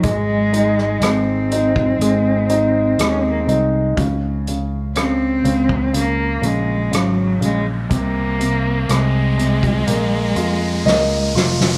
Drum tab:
HH |x-x-x-x-x-x-x-x-|x-x-x-x-x-x-x-x-|x-x-x-xxx-x-----|
SD |---rr-------r---|----r-------r---|----r-------o-oo|
BD |o------o--------|o------o--------|o------o--------|